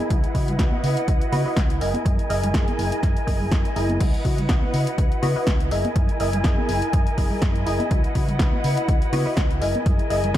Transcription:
Already playing: E4
0.00 tambourine
0.10 C#2 E4 F#4 B4 D#5 F#5, kick, closed hi-hat, tambourine, low conga
0.24 closed hi-hat
0.34 C#3 E4 F#4 B4 D#5, kick, open hi-hat
0.48 closed hi-hat, tambourine, low conga
0.58 C#2 E4 F#4 B4 D#5, kick, snare, closed hi-hat
0.72 tambourine, high conga
0.84 C#3, open hi-hat, tambourine
0.97 closed hi-hat
1.08 C#2, kick, closed hi-hat
1.21 closed hi-hat, tambourine
1.32 C#3 E4 F#4 B4 D#5, open hi-hat, tambourine, high conga
1.45 E4 F#4 B4 D#5, muted fingered electric bass stroke, tambourine
1.56 C#2, kick, snare, closed hi-hat
1.70 closed hi-hat
1.81 F#1 E4 G#4 A#4 D#5 G#5, open hi-hat, tambourine
1.94 closed hi-hat, tambourine, high conga
2.05 F#2 E4 G#4 A#4 D#5, kick, closed hi-hat, tambourine, low conga
2.19 closed hi-hat, tambourine
2.29 F#1 E4 G#4 A#4 D#5, open hi-hat, tambourine
2.43 closed hi-hat, tambourine, low conga
2.54 F#2 E4 G#4 A#4 D#5, kick, snare, closed hi-hat, tambourine
2.68 closed hi-hat, tambourine, high conga
2.79 F#1, open hi-hat, tambourine
2.92 closed hi-hat, tambourine
3.03 F#2 E4 G#4 A#4 D#5, kick, snare, closed hi-hat
3.16 muted fingered electric bass stroke, closed hi-hat, tambourine
3.27 F#1 E4 G#4 A#4 D#5, kick, open hi-hat, tambourine, high conga
3.40 tambourine, low conga
3.52 F#2, kick, snare, closed hi-hat
3.65 closed hi-hat
3.76 F#1 E4 G#4 A#4 D#5, open hi-hat, tambourine
3.89 closed hi-hat, tambourine, high conga
4.00 C#2 E4 F#4 B4 D#5 F#5, kick, closed hi-hat, crash, tambourine, low conga
4.14 closed hi-hat
4.25 C#3 E4 F#4 B4 D#5, kick, open hi-hat, tambourine
4.38 closed hi-hat, tambourine, low conga
4.48 C#2 E4 F#4 B4 D#5, kick, snare, closed hi-hat
4.62 tambourine, high conga
4.74 C#3, open hi-hat, tambourine
4.87 closed hi-hat, tambourine
4.98 C#2, kick, closed hi-hat
5.12 closed hi-hat, tambourine
5.22 C#3 E4 F#4 B4 D#5, open hi-hat, tambourine, high conga
5.36 E4 F#4 B4 D#5, muted fingered electric bass stroke, tambourine
5.47 C#2, kick, snare, closed hi-hat
5.60 closed hi-hat
5.71 F#1 E4 G#4 A#4 D#5 G#5, open hi-hat, tambourine
5.85 closed hi-hat, tambourine, high conga
5.95 F#2 E4 G#4 A#4 D#5, kick, closed hi-hat, tambourine, low conga
6.09 closed hi-hat
6.20 F#1 E4 G#4 A#4 D#5, open hi-hat, tambourine
6.33 closed hi-hat, tambourine, low conga
6.44 F#2 E4 G#4 A#4 D#5, kick, snare, closed hi-hat, tambourine
6.58 tambourine, high conga
6.69 F#1, open hi-hat, tambourine
6.82 closed hi-hat, tambourine
6.93 F#2 E4 G#4 A#4 D#5, kick, closed hi-hat, tambourine
7.06 muted fingered electric bass stroke, closed hi-hat, tambourine
7.17 F#1 E4 G#4 A#4 D#5, kick, open hi-hat, tambourine, high conga
7.31 muted fingered electric bass stroke, tambourine, low conga
7.42 F#2, kick, snare, closed hi-hat
7.55 closed hi-hat
7.66 F#1 E4 G#4 A#4 D#5, open hi-hat
7.80 closed hi-hat, tambourine, high conga
7.90 C#2 E4 F#4 B4 D#5 F#5, kick, closed hi-hat, tambourine, low conga
8.04 closed hi-hat
8.15 C#3 E4 F#4 B4 D#5, kick, open hi-hat, tambourine
8.28 closed hi-hat, tambourine, low conga
8.39 C#2 E4 F#4 B4 D#5, kick, snare, closed hi-hat
8.53 tambourine, high conga
8.63 C#3, open hi-hat, tambourine
8.77 closed hi-hat, tambourine
8.88 C#2, kick, closed hi-hat
9.02 closed hi-hat, tambourine
9.12 C#3 E4 F#4 B4 D#5, open hi-hat, tambourine, high conga
9.26 E4 F#4 B4 D#5, muted fingered electric bass stroke, tambourine
9.37 C#2, kick, snare, closed hi-hat
9.51 closed hi-hat
9.61 F#1 E4 G#4 A#4 D#5 G#5, open hi-hat, tambourine
9.75 closed hi-hat, tambourine, high conga
9.85 F#2 E4 G#4 A#4 D#5, kick, closed hi-hat, tambourine, low conga
9.99 closed hi-hat
10.10 F#1 E4 G#4 A#4 D#5, open hi-hat, tambourine
10.24 closed hi-hat, tambourine, low conga
10.34 E4, snare

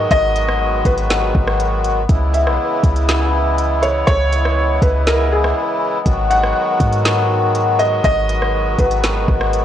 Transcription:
Already playing: D#3 F#3 G#3 B3 F#4, impact
0.11 G#1 D#5, kick, closed hi-hat
0.36 closed hi-hat
0.49 cross-stick
0.85 G#1 B4, kick, closed hi-hat
0.98 closed hi-hat
1.10 snare, closed hi-hat
1.35 G#1, kick
1.48 cross-stick
1.60 closed hi-hat
1.84 closed hi-hat
2.09 C#2 C#3 E3 G#3 E4, kick, closed hi-hat
2.34 E5, closed hi-hat
2.46 B1, cross-stick
2.83 C#2, kick, closed hi-hat
2.96 closed hi-hat
3.09 snare, closed hi-hat
3.58 closed hi-hat
3.82 C#5, closed hi-hat
4.07 C#2 C#5, kick, closed hi-hat
4.32 closed hi-hat
4.45 cross-stick
4.82 C#2 B4, kick, closed hi-hat
5.07 A#4, snare, closed hi-hat
5.32 G#4
5.44 cross-stick
6.06 G#1 D#3 F#3 F#4, kick, closed hi-hat
6.31 F#5, closed hi-hat
6.44 cross-stick
6.80 G#2, kick, closed hi-hat
6.93 closed hi-hat
7.05 snare, closed hi-hat
7.55 closed hi-hat
7.79 D#5, closed hi-hat
8.04 G#1 D#5, kick, closed hi-hat
8.29 closed hi-hat
8.42 cross-stick
8.79 G#1 B4, kick, closed hi-hat
8.91 closed hi-hat
9.04 snare, closed hi-hat
9.28 G#1, kick
9.41 cross-stick
9.53 closed hi-hat

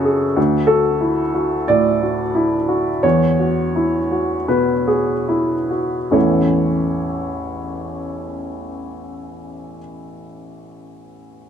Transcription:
Already playing: C#3 C#4 F#4 G#4 A4
0.05 G#4
0.37 D2
0.67 F#4 A4
1.01 E4
1.34 F#4
1.68 A2 D5
2.03 F#4
2.35 E4
2.68 F#4
3.03 E2 C#5
3.39 F#4
3.76 E4
4.11 F#4
4.48 B2 B4
4.87 F#4 G#4
5.28 E4
5.71 F#4
6.11 A1 E2 E3 A3 C#4 E4 C#5

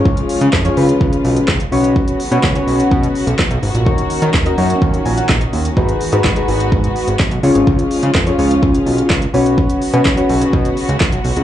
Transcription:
Already playing: C#3 F3 G#3 C#4 F4 G#4 C#5
0.05 C#2, kick
0.17 closed hi-hat
0.29 open hi-hat
0.41 C#3, closed hi-hat
0.53 F2, kick, snare, clap
0.65 C#4 F4 G#4 C#5, closed hi-hat
0.77 C#2 C#4 F4 G#4 B4, open hi-hat
0.89 closed hi-hat
1.01 C#2, kick
1.13 closed hi-hat
1.24 B1, open hi-hat
1.36 closed hi-hat
1.48 C#2, kick, snare, clap
1.60 closed hi-hat
1.72 B1 F#3 B3 C#4 F#4 B4 C#5, open hi-hat
1.84 closed hi-hat
1.96 kick
2.08 closed hi-hat
2.20 open hi-hat
2.31 B2 C#4 F#4 B4 C#5, closed hi-hat
2.44 C#2, kick, snare, clap
2.55 C#4 F#4 B4 C#5, closed hi-hat
2.67 B1, open hi-hat
2.80 closed hi-hat
2.91 B2, kick
3.03 closed hi-hat
3.15 open hi-hat
3.27 B1, closed hi-hat
3.39 kick, snare, clap
3.50 B1, closed hi-hat
3.62 G#1, open hi-hat
3.74 A#1, closed hi-hat
3.86 D#2 D#3 A#3 C#4 D#4 F#4 A#4 C#5, kick
3.98 closed hi-hat
4.10 open hi-hat
4.22 D#3, closed hi-hat
4.34 D#2, kick, snare, clap
4.46 D#4 F#4 A#4 D#5, closed hi-hat
4.58 F#2 D#4 F#4 A#4 C#5, open hi-hat
4.70 closed hi-hat
4.82 D#2, kick
4.94 closed hi-hat
5.05 A#1 G#5, open hi-hat
5.17 F#5, closed hi-hat
5.29 A#1 D#5, kick, snare, clap
5.41 D#5, closed hi-hat
5.53 D#2, open hi-hat
5.65 closed hi-hat
5.77 G#1 G#3 B3 D#4 F#4 G#4 B4, kick
5.89 closed hi-hat
6.01 open hi-hat
6.12 G#2 D#4 F#4 G#4 B4, closed hi-hat
6.24 G#1, kick, snare, clap
6.36 D#4 F#4 G#4 B4, closed hi-hat
6.48 G#1, open hi-hat
6.60 closed hi-hat
6.72 G#2, kick
6.84 closed hi-hat
6.96 open hi-hat
7.08 G#1, closed hi-hat
7.19 kick, snare, clap
7.31 B1, closed hi-hat
7.43 C#2 C#3 F3 C#4 F4 G#4 C#5, open hi-hat
7.55 G#1, closed hi-hat
7.67 C#2, kick
7.79 closed hi-hat
7.91 open hi-hat
8.03 C#3, closed hi-hat
8.15 F2, kick, snare, clap
8.27 C#4 F4 G#4 C#5, closed hi-hat
8.38 C#2 C#4 F4 G#4 C#5, open hi-hat
8.51 closed hi-hat
8.63 C#2, kick
8.75 closed hi-hat
8.86 B1, open hi-hat
8.98 closed hi-hat
9.10 C#2, kick, snare, clap
9.22 closed hi-hat
9.34 B1 C#3 F#3 B3 C#4 F#4 B4 C#5, open hi-hat
9.46 closed hi-hat
9.58 kick
9.70 closed hi-hat
9.82 open hi-hat
9.93 B2 C#4 F#4 B4 C#5, closed hi-hat
10.05 B1, kick, snare, clap
10.17 C#4 F#4 B4 C#5, closed hi-hat
10.29 B1, open hi-hat
10.42 closed hi-hat
10.53 B2, kick
10.65 closed hi-hat
10.77 open hi-hat
10.89 C#2, closed hi-hat
11.00 kick, snare, clap
11.12 B1, closed hi-hat
11.24 B1, open hi-hat
11.36 C#2, closed hi-hat

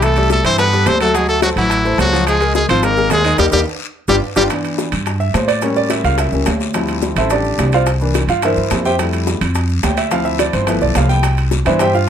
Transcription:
Already playing: C2 E3 E4 E5
0.02 A3 A4, high bongo, high timbale, long guiro, maracas
0.16 G3 G4 A4, high bongo, high timbale, maracas
0.30 A3 A4, high bongo, low timbale, short guiro, maracas
0.44 G2 E3 C4 E4 C5 E5, high bongo, high timbale, short guiro, maracas
0.58 G3 B3 G4 A4 B4, high bongo, high timbale, long guiro, maracas
0.73 G3 G4 A4, maracas
0.86 D2 C4 C5, high bongo, low bongo, high timbale, low timbale, short guiro, maracas
1.01 F#3 A3 F#4 A4 F#5, high bongo, high timbale, short guiro, maracas
1.14 F#3 G#3 F#4 G#4 F#5, high bongo, high timbale, long guiro, maracas
1.28 A3 A4, high bongo, maracas
1.42 F#3 A3 F#4 A4 C5, high bongo, high timbale, low timbale, short guiro, maracas
1.56 A1 E3 F#3 E4 F#4 F#5, high timbale, short guiro, maracas
1.70 high bongo, high timbale, long guiro, maracas
1.84 A3 A4 C5, high bongo, maracas
1.98 C#2 F#3 F#4, high bongo, low bongo, high timbale, low timbale, short guiro, maracas
2.13 F3 F4 F5, high bongo, short guiro, maracas
2.27 G#3 G#4, high bongo, high timbale, long guiro, maracas
2.41 G#3 G#4 A#4, high bongo, high timbale, maracas
2.55 G#3 G#4, high bongo, low timbale, short guiro, maracas
2.69 G#1 F3 C4 F4 C5 F5, high timbale, short guiro, maracas
2.83 G#3 A#3 G#4 A#4, high bongo, high timbale, long guiro, maracas
2.97 G#3 G#4 A#4, maracas
3.10 D#2 G#3 G#4, high bongo, low bongo, high timbale, low timbale, short guiro, maracas
3.24 D#3 D#4 D#5, high bongo, high timbale, short guiro, maracas
3.38 D#2 G3 D#4 G4 A#4, low bongo, high timbale, long guiro, maracas
3.52 D#2 G3 D#4 G4 A#4, low bongo, high timbale, long guiro, maracas
4.08 G1 G3 D4 F4 G4, low bongo, high timbale, long guiro, maracas
4.36 G1 G3 D4 F4 G4, low bongo, high timbale, long guiro, maracas
4.50 E3 B3 D4, high bongo, high timbale, long guiro, maracas
4.65 high bongo, high timbale, maracas
4.78 high bongo, low timbale, short guiro, maracas
4.92 G2, high bongo, high timbale, short guiro, maracas
5.06 high bongo, high timbale, long guiro, maracas
5.20 E5, maracas
5.34 A2 C5, high bongo, low bongo, high timbale, low timbale, short guiro, maracas
5.48 D5, high bongo, high timbale, short guiro, maracas
5.62 G3 A#3 C#4 C#5, high bongo, high timbale, long guiro, maracas
5.76 D5, high bongo, maracas
5.90 E5, high bongo, high timbale, low timbale, short guiro, maracas
6.04 C#2 F5, high timbale, short guiro, maracas
6.18 E5, high bongo, high timbale, long guiro, maracas
6.32 C#2 G3 A#3 C#4, high bongo, maracas
6.46 D2, high bongo, low bongo, high timbale, low timbale, short guiro, maracas
6.60 high bongo, short guiro, maracas
6.74 F3 G3 C4 E4, high bongo, high timbale, long guiro, maracas
6.88 high bongo, high timbale, maracas
7.02 high bongo, low timbale, short guiro, maracas
7.16 A1 E4 A4 C5 E5, high bongo, high timbale, short guiro, maracas
7.30 D4 G4 A4 D5, high bongo, high timbale, long guiro, maracas
7.44 maracas
7.58 C2, high bongo, low bongo, high timbale, low timbale, short guiro, maracas
7.72 F4 C5 D5 F5, high bongo, high timbale, short guiro, maracas
7.86 high bongo, high timbale, long guiro, maracas
8.01 E3 A#3 D4, high bongo, maracas
8.14 high bongo, high timbale, low timbale, short guiro, maracas
8.28 G2 F4 F5, high timbale, short guiro, maracas
8.42 E3 A#3 D4 E4 A#4 C5 E5, high bongo, high timbale, long guiro, maracas
8.56 G2, high bongo, maracas
8.71 F2, high bongo, low bongo, high timbale, low timbale, short guiro, maracas
8.85 G4 C5 E5 G5, high bongo, short guiro, maracas
8.99 G3 A3 E4, high bongo, high timbale, long guiro, maracas
9.13 high bongo, high timbale, maracas
9.27 high bongo, low timbale, short guiro, maracas
9.41 F2, high bongo, high timbale, short guiro, maracas
9.55 high bongo, high timbale, long guiro, maracas
9.69 maracas
9.83 D2 G5, high bongo, low bongo, high timbale, low timbale, short guiro, maracas
9.97 E5, high bongo, high timbale, short guiro, maracas
10.11 F3 C4 E4 F5, high bongo, high timbale, long guiro, maracas
10.25 E5, high bongo, maracas
10.39 D5, high bongo, high timbale, low timbale, short guiro, maracas
10.53 G1 C5, high timbale, short guiro, maracas
10.67 F3 A3 B3 E4 B4, high bongo, high timbale, long guiro, maracas
10.81 B1 D5, high bongo, maracas
10.95 C2 F5, high bongo, low bongo, high timbale, low timbale, short guiro, maracas
11.09 G5, high bongo, short guiro, maracas
11.23 high bongo, high timbale, long guiro, maracas
11.37 high bongo, high timbale, maracas
11.51 high bongo, low timbale, short guiro, maracas
11.65 G2 E3 B3 D4 E4 B4 C5 E5, high bongo, high timbale, short guiro, maracas
11.79 G4 C5 E5 G5, high bongo, high timbale, long guiro, maracas
11.94 F4 F5, maracas

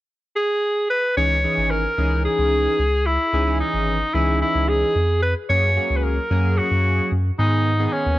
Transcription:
0.36 G#4
0.90 B4
1.17 C#2 E3 C#4 D#4 G#4 C#5
1.44 E3 C#4 D#4 G#4
1.58 G#1
1.71 A#4
1.98 C#2 E3 C#4 D#4 G#4
2.25 G#4
2.39 C#2
2.79 C#2
3.06 E4
3.33 C#2 E3 C#4 D#4 G#4
3.47 E3 C#4 D#4 G#4
3.60 D#4
3.74 G#1
4.14 C#2 E3 C#4 D#4 E4 G#4
4.41 E4
4.55 C#2
4.68 G#4
4.95 F2
5.22 B4
5.49 F#2 F#3 A#3 C#4 G#4 C#5
5.76 F#3 A#3 C#4 G#4
5.90 C#2
5.96 B4
6.03 A#4
6.30 F#2 F#3 A#3 C#4 G#4
6.58 F#4
6.71 F#2
7.12 F#2
7.38 G#2 D#3 G#3 B3 D#4 G#4
7.79 D#3 G#3 B3 G#4
7.86 D#4
7.93 C#4
8.06 D#2

